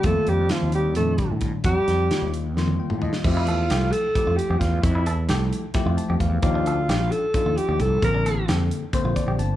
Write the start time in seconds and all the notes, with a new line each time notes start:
0.03 F2 D#3 G3 A3 A#3 F4 A4, kick, closed hi-hat
0.27 F2 G3 G4, closed hi-hat
0.49 D#3 F3 G3 A#3 C4 F4, snare, closed hi-hat
0.63 D#2
0.72 G3 G4, closed hi-hat
0.95 F2 A#2 D#3 G3 A3 D4 A4, closed hi-hat
1.18 kick, closed hi-hat
1.32 A2
1.41 kick, closed hi-hat
1.64 F2 G3 G4, kick, closed hi-hat
1.88 F2, snare, closed hi-hat
2.10 D#3 G3 A#3 F4, snare, closed hi-hat
2.22 D#2
2.34 closed hi-hat
2.56 F2 D#3 G3 A#3 F4, snare
2.68 high tom
2.80 G5
2.90 A2, mid tom
3.02 D#5, floor tom
3.13 snare
3.24 F2 F3 A3 F4 G4 E5, kick, crash
3.37 E4
3.47 E2 A4, closed hi-hat
3.70 C2 F3 A3 E4 G4 A4, snare, closed hi-hat
3.91 A4, closed hi-hat
4.15 F3 A3 E4 G4, kick, closed hi-hat
4.27 F2 F4
4.36 G4, closed hi-hat
4.50 F2 G4
4.59 E2 F4, kick, snare, closed hi-hat
4.82 F2 E4, kick, closed hi-hat
4.95 E4
5.06 E2 A4, closed hi-hat
5.28 C2 F3 A3 E4 G4 A4, snare, closed hi-hat
5.53 closed hi-hat
5.74 F3 A3 E4 G4, kick, snare, closed hi-hat
5.86 F2 F4
5.97 A5, closed hi-hat
6.10 F2 G4
6.20 E2 F5, kick, closed hi-hat
6.42 D#2 F3 D4 D#4 F4 G4, kick, closed hi-hat
6.55 D4
6.66 D2 A4, closed hi-hat
6.89 A#1 F3 D4 D#4 F4 G4, snare, closed hi-hat
7.11 A4, closed hi-hat
7.34 F3 D4 D#4 F4, kick, closed hi-hat
7.46 D#2 F4
7.57 G4, closed hi-hat
7.69 D#2 G4
7.80 C2 A4, kick, closed hi-hat
8.02 A#1 D3 A#3 C4 A#4, kick, closed hi-hat
8.14 D4
8.25 A1 A4, closed hi-hat
8.47 F2 D3 A#3 C4 G4 A4, snare, closed hi-hat
8.71 closed hi-hat
8.93 D3 A#3 C4 C5, kick, closed hi-hat
9.04 A#1 F4
9.16 D5, kick, closed hi-hat
9.26 A#1 G4
9.38 G1 A5, closed hi-hat